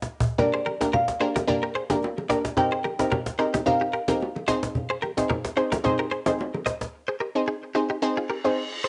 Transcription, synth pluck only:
0.38 A#3 D4 G4 A#4
0.81 A#3 D4 G4 A#4
1.20 A#3 D4 G4 A#4
1.47 A#3 D4 G4 A#4
1.90 A#3 D4 G4 A#4
2.29 A#3 D4 G4 A#4
2.57 C4 D#4 G4 A#4
2.99 C4 D#4 G4 A#4
3.39 C4 D#4 G4 A#4
3.66 C4 D#4 G4 A#4
4.08 C4 D#4 G4 A#4
4.48 C4 D#4 G#4 C5
5.17 C4 D#4 G#4 C5
5.57 C4 D#4 G#4 C5
5.84 C4 D#4 G#4 C5
6.26 C4 D#4 G#4 C5
7.35 C4 D#4 G#4 C5
7.75 C4 D#4 G#4 C5
8.02 C4 D#4 G#4 C5
8.44 C4 D#4 G#4 C5

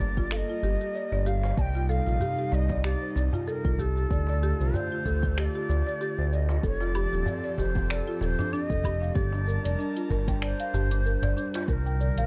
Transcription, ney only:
Already playing: D5
0.32 F5
0.36 D#5
1.26 F5
1.57 G5 A5
1.89 F5
2.53 D#5
2.84 D5
3.47 A#4
3.79 A4
4.74 C5
5.39 D#5
5.44 D5
6.34 D#5
6.65 C#5
6.77 D5
7.59 C5
7.91 A4 A#4
8.22 C5 D5
8.52 D5
8.63 D#5
9.14 D5
10.42 C5
11.69 A#4 C5

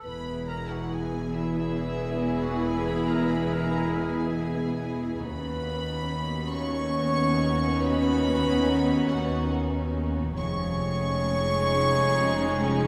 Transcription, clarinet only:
0.04 B4
0.48 A#4
0.70 F#4
0.91 G#4
1.36 E4
2.42 F#4
2.65 G#4
2.86 B4
3.09 A#4
3.31 B4
3.51 A#4
3.95 G#4
5.25 B4
6.54 C#5
7.80 B4
9.10 F#4
10.36 C#5

